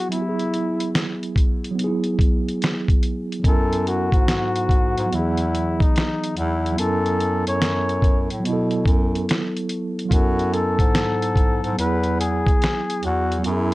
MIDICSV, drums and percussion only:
0, 0, Header, 1, 2, 480
1, 0, Start_track
1, 0, Tempo, 833333
1, 63, Time_signature, 4, 2, 24, 8
1, 7914, End_track
2, 0, Start_track
2, 0, Title_t, "Drums"
2, 69, Note_on_c, 9, 42, 80
2, 126, Note_off_c, 9, 42, 0
2, 227, Note_on_c, 9, 42, 42
2, 285, Note_off_c, 9, 42, 0
2, 309, Note_on_c, 9, 42, 58
2, 367, Note_off_c, 9, 42, 0
2, 462, Note_on_c, 9, 42, 53
2, 520, Note_off_c, 9, 42, 0
2, 548, Note_on_c, 9, 38, 113
2, 552, Note_on_c, 9, 42, 83
2, 605, Note_off_c, 9, 38, 0
2, 610, Note_off_c, 9, 42, 0
2, 708, Note_on_c, 9, 42, 45
2, 766, Note_off_c, 9, 42, 0
2, 782, Note_on_c, 9, 36, 73
2, 792, Note_on_c, 9, 42, 58
2, 840, Note_off_c, 9, 36, 0
2, 850, Note_off_c, 9, 42, 0
2, 947, Note_on_c, 9, 42, 46
2, 1004, Note_off_c, 9, 42, 0
2, 1032, Note_on_c, 9, 42, 75
2, 1090, Note_off_c, 9, 42, 0
2, 1173, Note_on_c, 9, 42, 41
2, 1231, Note_off_c, 9, 42, 0
2, 1260, Note_on_c, 9, 36, 86
2, 1272, Note_on_c, 9, 42, 69
2, 1318, Note_off_c, 9, 36, 0
2, 1329, Note_off_c, 9, 42, 0
2, 1431, Note_on_c, 9, 42, 49
2, 1489, Note_off_c, 9, 42, 0
2, 1509, Note_on_c, 9, 42, 85
2, 1520, Note_on_c, 9, 38, 107
2, 1567, Note_off_c, 9, 42, 0
2, 1577, Note_off_c, 9, 38, 0
2, 1661, Note_on_c, 9, 36, 84
2, 1669, Note_on_c, 9, 42, 52
2, 1719, Note_off_c, 9, 36, 0
2, 1726, Note_off_c, 9, 42, 0
2, 1744, Note_on_c, 9, 42, 58
2, 1802, Note_off_c, 9, 42, 0
2, 1914, Note_on_c, 9, 42, 49
2, 1971, Note_off_c, 9, 42, 0
2, 1983, Note_on_c, 9, 36, 98
2, 1986, Note_on_c, 9, 42, 81
2, 2040, Note_off_c, 9, 36, 0
2, 2044, Note_off_c, 9, 42, 0
2, 2146, Note_on_c, 9, 42, 45
2, 2204, Note_off_c, 9, 42, 0
2, 2229, Note_on_c, 9, 42, 60
2, 2287, Note_off_c, 9, 42, 0
2, 2375, Note_on_c, 9, 36, 80
2, 2382, Note_on_c, 9, 42, 49
2, 2432, Note_off_c, 9, 36, 0
2, 2440, Note_off_c, 9, 42, 0
2, 2467, Note_on_c, 9, 38, 107
2, 2471, Note_on_c, 9, 42, 87
2, 2524, Note_off_c, 9, 38, 0
2, 2529, Note_off_c, 9, 42, 0
2, 2624, Note_on_c, 9, 42, 47
2, 2682, Note_off_c, 9, 42, 0
2, 2702, Note_on_c, 9, 36, 80
2, 2711, Note_on_c, 9, 42, 57
2, 2759, Note_off_c, 9, 36, 0
2, 2769, Note_off_c, 9, 42, 0
2, 2866, Note_on_c, 9, 42, 45
2, 2923, Note_off_c, 9, 42, 0
2, 2952, Note_on_c, 9, 42, 71
2, 3010, Note_off_c, 9, 42, 0
2, 3096, Note_on_c, 9, 42, 43
2, 3153, Note_off_c, 9, 42, 0
2, 3195, Note_on_c, 9, 42, 69
2, 3252, Note_off_c, 9, 42, 0
2, 3343, Note_on_c, 9, 36, 96
2, 3354, Note_on_c, 9, 42, 48
2, 3400, Note_off_c, 9, 36, 0
2, 3411, Note_off_c, 9, 42, 0
2, 3432, Note_on_c, 9, 42, 77
2, 3443, Note_on_c, 9, 38, 107
2, 3490, Note_off_c, 9, 42, 0
2, 3500, Note_off_c, 9, 38, 0
2, 3592, Note_on_c, 9, 42, 52
2, 3649, Note_off_c, 9, 42, 0
2, 3667, Note_on_c, 9, 42, 57
2, 3724, Note_off_c, 9, 42, 0
2, 3837, Note_on_c, 9, 42, 46
2, 3894, Note_off_c, 9, 42, 0
2, 3907, Note_on_c, 9, 42, 84
2, 3965, Note_off_c, 9, 42, 0
2, 4065, Note_on_c, 9, 42, 42
2, 4123, Note_off_c, 9, 42, 0
2, 4150, Note_on_c, 9, 42, 59
2, 4207, Note_off_c, 9, 42, 0
2, 4302, Note_on_c, 9, 42, 51
2, 4360, Note_off_c, 9, 42, 0
2, 4387, Note_on_c, 9, 38, 122
2, 4392, Note_on_c, 9, 42, 84
2, 4445, Note_off_c, 9, 38, 0
2, 4450, Note_off_c, 9, 42, 0
2, 4546, Note_on_c, 9, 42, 47
2, 4603, Note_off_c, 9, 42, 0
2, 4621, Note_on_c, 9, 36, 77
2, 4631, Note_on_c, 9, 42, 54
2, 4679, Note_off_c, 9, 36, 0
2, 4688, Note_off_c, 9, 42, 0
2, 4783, Note_on_c, 9, 42, 44
2, 4841, Note_off_c, 9, 42, 0
2, 4870, Note_on_c, 9, 42, 78
2, 4927, Note_off_c, 9, 42, 0
2, 5016, Note_on_c, 9, 42, 38
2, 5073, Note_off_c, 9, 42, 0
2, 5101, Note_on_c, 9, 36, 90
2, 5112, Note_on_c, 9, 42, 72
2, 5158, Note_off_c, 9, 36, 0
2, 5170, Note_off_c, 9, 42, 0
2, 5272, Note_on_c, 9, 42, 50
2, 5330, Note_off_c, 9, 42, 0
2, 5351, Note_on_c, 9, 42, 85
2, 5362, Note_on_c, 9, 38, 110
2, 5409, Note_off_c, 9, 42, 0
2, 5419, Note_off_c, 9, 38, 0
2, 5510, Note_on_c, 9, 42, 53
2, 5568, Note_off_c, 9, 42, 0
2, 5583, Note_on_c, 9, 42, 55
2, 5641, Note_off_c, 9, 42, 0
2, 5754, Note_on_c, 9, 42, 52
2, 5812, Note_off_c, 9, 42, 0
2, 5823, Note_on_c, 9, 36, 86
2, 5828, Note_on_c, 9, 42, 84
2, 5881, Note_off_c, 9, 36, 0
2, 5886, Note_off_c, 9, 42, 0
2, 5986, Note_on_c, 9, 42, 41
2, 6044, Note_off_c, 9, 42, 0
2, 6068, Note_on_c, 9, 42, 57
2, 6126, Note_off_c, 9, 42, 0
2, 6214, Note_on_c, 9, 36, 74
2, 6219, Note_on_c, 9, 42, 50
2, 6272, Note_off_c, 9, 36, 0
2, 6276, Note_off_c, 9, 42, 0
2, 6306, Note_on_c, 9, 38, 109
2, 6311, Note_on_c, 9, 42, 89
2, 6364, Note_off_c, 9, 38, 0
2, 6368, Note_off_c, 9, 42, 0
2, 6465, Note_on_c, 9, 42, 44
2, 6522, Note_off_c, 9, 42, 0
2, 6541, Note_on_c, 9, 36, 82
2, 6549, Note_on_c, 9, 42, 57
2, 6599, Note_off_c, 9, 36, 0
2, 6607, Note_off_c, 9, 42, 0
2, 6705, Note_on_c, 9, 42, 44
2, 6762, Note_off_c, 9, 42, 0
2, 6789, Note_on_c, 9, 42, 80
2, 6846, Note_off_c, 9, 42, 0
2, 6932, Note_on_c, 9, 42, 42
2, 6990, Note_off_c, 9, 42, 0
2, 7031, Note_on_c, 9, 42, 74
2, 7089, Note_off_c, 9, 42, 0
2, 7180, Note_on_c, 9, 36, 93
2, 7190, Note_on_c, 9, 42, 48
2, 7238, Note_off_c, 9, 36, 0
2, 7247, Note_off_c, 9, 42, 0
2, 7268, Note_on_c, 9, 42, 81
2, 7279, Note_on_c, 9, 38, 111
2, 7326, Note_off_c, 9, 42, 0
2, 7337, Note_off_c, 9, 38, 0
2, 7429, Note_on_c, 9, 42, 49
2, 7487, Note_off_c, 9, 42, 0
2, 7504, Note_on_c, 9, 42, 60
2, 7562, Note_off_c, 9, 42, 0
2, 7671, Note_on_c, 9, 42, 51
2, 7728, Note_off_c, 9, 42, 0
2, 7743, Note_on_c, 9, 42, 82
2, 7801, Note_off_c, 9, 42, 0
2, 7914, End_track
0, 0, End_of_file